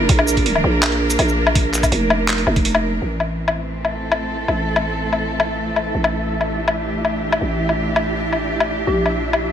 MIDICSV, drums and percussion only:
0, 0, Header, 1, 2, 480
1, 0, Start_track
1, 0, Tempo, 365854
1, 122, Time_signature, 4, 2, 24, 8
1, 12492, End_track
2, 0, Start_track
2, 0, Title_t, "Drums"
2, 119, Note_on_c, 9, 42, 80
2, 121, Note_on_c, 9, 36, 119
2, 245, Note_on_c, 9, 77, 88
2, 250, Note_off_c, 9, 42, 0
2, 252, Note_off_c, 9, 36, 0
2, 362, Note_on_c, 9, 82, 72
2, 377, Note_off_c, 9, 77, 0
2, 486, Note_on_c, 9, 36, 59
2, 487, Note_on_c, 9, 42, 37
2, 493, Note_off_c, 9, 82, 0
2, 603, Note_off_c, 9, 42, 0
2, 603, Note_on_c, 9, 42, 65
2, 617, Note_off_c, 9, 36, 0
2, 728, Note_on_c, 9, 77, 53
2, 734, Note_off_c, 9, 42, 0
2, 859, Note_off_c, 9, 77, 0
2, 1082, Note_on_c, 9, 39, 119
2, 1082, Note_on_c, 9, 42, 81
2, 1082, Note_on_c, 9, 77, 85
2, 1206, Note_off_c, 9, 42, 0
2, 1206, Note_on_c, 9, 42, 35
2, 1213, Note_off_c, 9, 39, 0
2, 1213, Note_off_c, 9, 77, 0
2, 1337, Note_off_c, 9, 42, 0
2, 1445, Note_on_c, 9, 42, 36
2, 1445, Note_on_c, 9, 82, 70
2, 1560, Note_off_c, 9, 42, 0
2, 1560, Note_on_c, 9, 42, 66
2, 1560, Note_on_c, 9, 77, 58
2, 1576, Note_off_c, 9, 82, 0
2, 1685, Note_on_c, 9, 82, 41
2, 1691, Note_off_c, 9, 42, 0
2, 1691, Note_off_c, 9, 77, 0
2, 1816, Note_off_c, 9, 82, 0
2, 1924, Note_on_c, 9, 77, 85
2, 2039, Note_on_c, 9, 36, 124
2, 2041, Note_on_c, 9, 42, 80
2, 2055, Note_off_c, 9, 77, 0
2, 2170, Note_off_c, 9, 36, 0
2, 2172, Note_off_c, 9, 42, 0
2, 2280, Note_on_c, 9, 39, 35
2, 2280, Note_on_c, 9, 82, 70
2, 2403, Note_on_c, 9, 36, 60
2, 2404, Note_off_c, 9, 82, 0
2, 2404, Note_on_c, 9, 42, 38
2, 2404, Note_on_c, 9, 77, 56
2, 2404, Note_on_c, 9, 82, 39
2, 2411, Note_off_c, 9, 39, 0
2, 2520, Note_off_c, 9, 42, 0
2, 2520, Note_on_c, 9, 42, 67
2, 2534, Note_off_c, 9, 36, 0
2, 2536, Note_off_c, 9, 77, 0
2, 2536, Note_off_c, 9, 82, 0
2, 2651, Note_off_c, 9, 42, 0
2, 2759, Note_on_c, 9, 77, 88
2, 2890, Note_off_c, 9, 77, 0
2, 2996, Note_on_c, 9, 39, 117
2, 2996, Note_on_c, 9, 42, 84
2, 3122, Note_off_c, 9, 42, 0
2, 3122, Note_on_c, 9, 42, 37
2, 3128, Note_off_c, 9, 39, 0
2, 3237, Note_on_c, 9, 77, 57
2, 3253, Note_off_c, 9, 42, 0
2, 3363, Note_on_c, 9, 36, 104
2, 3364, Note_on_c, 9, 42, 38
2, 3369, Note_off_c, 9, 77, 0
2, 3477, Note_off_c, 9, 42, 0
2, 3477, Note_on_c, 9, 42, 68
2, 3494, Note_off_c, 9, 36, 0
2, 3603, Note_on_c, 9, 77, 86
2, 3609, Note_off_c, 9, 42, 0
2, 3734, Note_off_c, 9, 77, 0
2, 4199, Note_on_c, 9, 77, 50
2, 4331, Note_off_c, 9, 77, 0
2, 4562, Note_on_c, 9, 77, 74
2, 4694, Note_off_c, 9, 77, 0
2, 5046, Note_on_c, 9, 77, 48
2, 5177, Note_off_c, 9, 77, 0
2, 5400, Note_on_c, 9, 77, 75
2, 5531, Note_off_c, 9, 77, 0
2, 5882, Note_on_c, 9, 77, 49
2, 6013, Note_off_c, 9, 77, 0
2, 6246, Note_on_c, 9, 77, 70
2, 6377, Note_off_c, 9, 77, 0
2, 6725, Note_on_c, 9, 77, 48
2, 6857, Note_off_c, 9, 77, 0
2, 7082, Note_on_c, 9, 77, 76
2, 7213, Note_off_c, 9, 77, 0
2, 7561, Note_on_c, 9, 77, 51
2, 7692, Note_off_c, 9, 77, 0
2, 7926, Note_on_c, 9, 77, 74
2, 8058, Note_off_c, 9, 77, 0
2, 8406, Note_on_c, 9, 77, 45
2, 8537, Note_off_c, 9, 77, 0
2, 8760, Note_on_c, 9, 77, 75
2, 8891, Note_off_c, 9, 77, 0
2, 9245, Note_on_c, 9, 77, 47
2, 9376, Note_off_c, 9, 77, 0
2, 9610, Note_on_c, 9, 77, 73
2, 9741, Note_off_c, 9, 77, 0
2, 10090, Note_on_c, 9, 77, 45
2, 10221, Note_off_c, 9, 77, 0
2, 10444, Note_on_c, 9, 77, 72
2, 10575, Note_off_c, 9, 77, 0
2, 10923, Note_on_c, 9, 77, 46
2, 11055, Note_off_c, 9, 77, 0
2, 11288, Note_on_c, 9, 77, 72
2, 11419, Note_off_c, 9, 77, 0
2, 11882, Note_on_c, 9, 77, 47
2, 12013, Note_off_c, 9, 77, 0
2, 12245, Note_on_c, 9, 77, 68
2, 12376, Note_off_c, 9, 77, 0
2, 12492, End_track
0, 0, End_of_file